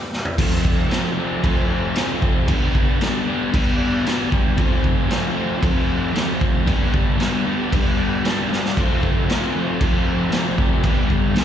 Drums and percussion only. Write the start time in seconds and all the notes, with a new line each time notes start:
0.13 snare
0.25 floor tom
0.38 kick, crash
0.65 kick
0.91 snare, crash
1.44 kick, crash
1.96 snare, crash
2.22 kick
2.48 kick, crash
2.75 kick
3.01 snare, crash
3.54 kick, crash
4.06 snare, crash
4.32 kick
4.58 kick, crash
4.84 kick
5.11 snare, crash
5.63 kick, crash
6.16 snare, crash
6.41 kick
6.67 kick, crash
6.94 kick
7.20 snare, crash
7.72 kick, crash
8.25 snare, crash
8.53 snare
8.65 snare
8.77 kick, crash
9.03 kick
9.30 snare, crash
9.81 kick, crash
10.32 snare, crash
10.58 kick
10.83 kick, crash
11.10 kick
11.36 snare, crash